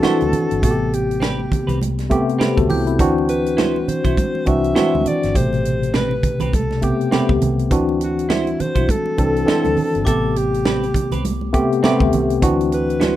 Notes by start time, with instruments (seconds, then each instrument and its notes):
Already playing: tine electric piano E3 C4 D4 F#4, alto saxophone A4
0.03 tine electric piano E3 C4 D4 F#4, clean electric guitar E4 F#4 C5, muted fingered electric bass stroke, snare, muted conga, high conga
0.20 fingered electric bass D2, closed hi-hat, high conga
0.33 closed hi-hat, low conga
0.51 fingered electric bass G1, closed hi-hat
0.62 fingered electric bass A1, tine electric piano C3 A3 B3 F#4, alto saxophone A4, kick, closed hi-hat, muted conga
0.70 tine electric piano G4
0.93 alto saxophone G4, closed hi-hat
1.11 closed hi-hat
1.20 clean electric guitar C4 G4 B4, snare, high conga
1.40 muted conga
1.52 muted fingered electric bass stroke, kick, closed hi-hat, low conga
1.67 fingered electric bass C2, clean electric guitar C4 G4 B4, closed hi-hat, low conga
1.82 closed hi-hat, muted conga, high conga
1.99 snare, closed hi-hat, muted conga
2.10 tine electric piano C3 A3 B3 G4, kick, closed hi-hat, high conga
2.29 closed hi-hat
2.39 clean electric guitar C4 G4 B4, tine electric piano A4 C5, snare, high conga
2.57 fingered electric bass D2, tine electric piano F#4 A4, kick, closed hi-hat, high conga
2.69 fingered electric bass C2, tine electric piano E4 G4, glockenspiel G6, open hi-hat, low conga
2.87 tine electric piano C4 E4, closed hi-hat
2.99 fingered electric bass D2, tine electric piano E3 C4 D4 F#4, kick, closed hi-hat
3.18 muted conga
3.29 alto saxophone B4, closed hi-hat
3.46 closed hi-hat
3.57 clean electric guitar E4 F#4 C5, snare, muted conga, high conga
3.76 muted conga
3.88 alto saxophone C5, muted fingered electric bass stroke, closed hi-hat, low conga
4.04 fingered electric bass B1, clean electric guitar E4 F#4 C5, kick, closed hi-hat, low conga
4.17 kick, closed hi-hat, muted conga, high conga
4.35 muted conga
4.45 fingered electric bass C2, tine electric piano E3 C4 D4 F#4, alto saxophone E5, kick, closed hi-hat, high conga
4.64 closed hi-hat
4.75 tine electric piano E3 C4 D4 F#4, clean electric guitar E4 F#4 C5, snare, muted conga, high conga
4.95 fingered electric bass D2, muted conga, high conga
5.06 alto saxophone D5, closed hi-hat, low conga
5.23 fingered electric bass G1, snare, closed hi-hat
5.34 fingered electric bass A1, tine electric piano B2 C3 A3 G4, alto saxophone C5, kick, closed hi-hat, muted conga
5.53 closed hi-hat, muted conga
5.65 closed hi-hat
5.83 closed hi-hat
5.94 clean electric guitar C4 G4 B4, alto saxophone B4, snare, muted conga, high conga
6.11 muted conga
6.23 muted fingered electric bass stroke, kick, closed hi-hat, low conga
6.40 fingered electric bass C2, clean electric guitar C4 G4 B4, closed hi-hat, low conga
6.53 alto saxophone A4, kick, closed hi-hat, high conga
6.71 snare, muted conga
6.82 tine electric piano C3 A3 B3 G4, alto saxophone G4, kick, closed hi-hat, high conga
7.01 closed hi-hat
7.11 tine electric piano C3 A3 B3 G4, clean electric guitar C4 G4 B4, snare, high conga
7.29 fingered electric bass D2, kick, high conga
7.41 fingered electric bass C2, closed hi-hat, low conga
7.59 closed hi-hat
7.71 fingered electric bass D2, tine electric piano E3 C4 D4 F#4, kick, closed hi-hat, muted conga
7.89 muted conga
8.01 alto saxophone F#4, closed hi-hat
8.19 closed hi-hat
8.29 clean electric guitar E4 F#4 C5, alto saxophone E4, snare, muted conga, high conga
8.47 closed hi-hat, muted conga
8.60 alto saxophone C5, muted fingered electric bass stroke, closed hi-hat, low conga
8.75 fingered electric bass B1, clean electric guitar E4 F#4 C5, kick, closed hi-hat, low conga
8.89 alto saxophone A4, kick, closed hi-hat, muted conga, high conga
9.06 muted conga
9.17 fingered electric bass C2, tine electric piano E3 C4 D4 A4, kick, closed hi-hat, high conga
9.36 closed hi-hat
9.45 tine electric piano E3 C4 D4 A4, clean electric guitar E4 F#4, snare, high conga
9.50 clean electric guitar C5
9.65 fingered electric bass D2, closed hi-hat, muted conga, high conga
9.77 open hi-hat, low conga
9.95 fingered electric bass G1, closed hi-hat
10.04 fingered electric bass A1, tine electric piano C3 A3 B3 G4, alto saxophone A4, glockenspiel D6, kick, closed hi-hat
10.36 alto saxophone G4, closed hi-hat
10.54 closed hi-hat
10.65 clean electric guitar C4 G4 B4, snare, muted conga, high conga
10.83 closed hi-hat, muted conga
10.94 muted fingered electric bass stroke, kick, closed hi-hat, low conga
11.12 fingered electric bass C2, clean electric guitar C4 G4 B4, closed hi-hat, low conga
11.25 closed hi-hat, muted conga, high conga
11.41 muted conga
11.52 tine electric piano C3 A3 B3 G4, kick, closed hi-hat, high conga
11.72 closed hi-hat
11.83 tine electric piano C3 A3 B3 G4, clean electric guitar C4 G4 B4, snare, muted conga, high conga
12.00 fingered electric bass D2, kick, muted conga, high conga
12.13 fingered electric bass C2, closed hi-hat, low conga
12.30 closed hi-hat
12.42 fingered electric bass D2, tine electric piano E3 C4 D4 F#4, kick, closed hi-hat, muted conga
12.61 closed hi-hat, muted conga
12.72 alto saxophone B4, closed hi-hat
12.90 closed hi-hat
13.00 clean electric guitar E4 F#4 C5, snare, muted conga, high conga